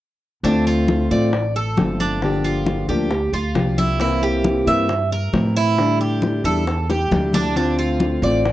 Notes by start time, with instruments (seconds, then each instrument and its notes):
0.43 upright bass D2, steel-string acoustic guitar D3 A3 C4 F4, cuban tres D4, high bongo, high conga
0.66 cuban tres F4, high conga
0.88 high bongo, high conga
1.11 upright bass A1, steel-string acoustic guitar A3 C4 F4, cuban tres D5, high conga
1.33 muted steel-string acoustic guitar stroke, high bongo, high conga
1.55 cuban tres A4, high conga
1.77 upright bass G1, steel-string acoustic guitar D3 A3 C4 F4, high bongo, low bongo, high conga
2.00 cuban tres D4, high conga
2.22 steel-string acoustic guitar D3 F3 A#3 D4 G4, high bongo, high conga
2.44 cuban tres F4, high conga
2.66 high bongo, high conga
2.88 upright bass D2, steel-string acoustic guitar F3 A#3 D4 G4, cuban tres G4, high bongo, high conga
3.11 muted steel-string acoustic guitar stroke, high bongo, high conga
3.32 upright bass D2, cuban tres F4, high bongo, high conga
3.55 upright bass C2, steel-string acoustic guitar F3 A#3 D4 G4, high bongo, low bongo, high conga
3.78 cuban tres E4, high bongo, high conga
4.00 steel-string acoustic guitar C3 E3 A#3 C4 E4, cuban tres E4, high bongo, high conga
4.22 cuban tres G4, high conga
4.44 high bongo, high conga
4.66 upright bass G2, steel-string acoustic guitar E3 A#3 C4 E4, cuban tres E5, high conga
4.89 muted steel-string acoustic guitar stroke, high bongo, high conga
5.11 cuban tres A#4, high conga
5.33 upright bass A2, steel-string acoustic guitar E3 C4 E4, high bongo, low bongo, high conga
5.56 cuban tres E4
5.78 steel-string acoustic guitar D3 G3 D4 E4, high bongo, high conga
6.00 cuban tres G4, high conga
6.22 high bongo, high conga
6.44 upright bass E2, steel-string acoustic guitar G3 D4 E4, cuban tres A4, high bongo, high conga
6.67 muted steel-string acoustic guitar stroke, high bongo, high conga
6.89 cuban tres G4, high bongo, high conga
7.11 upright bass D2, steel-string acoustic guitar D3 G3 D4 E4, low bongo, high conga
7.33 cuban tres D4, low bongo, high conga
7.56 steel-string acoustic guitar D3 A3 C4 F4, cuban tres D4, high bongo, high conga
7.78 cuban tres F4, high conga
8.00 high bongo, high conga
8.22 upright bass A1, steel-string acoustic guitar A3 C4 F4, cuban tres D5, high conga
8.45 muted steel-string acoustic guitar stroke, high bongo, high conga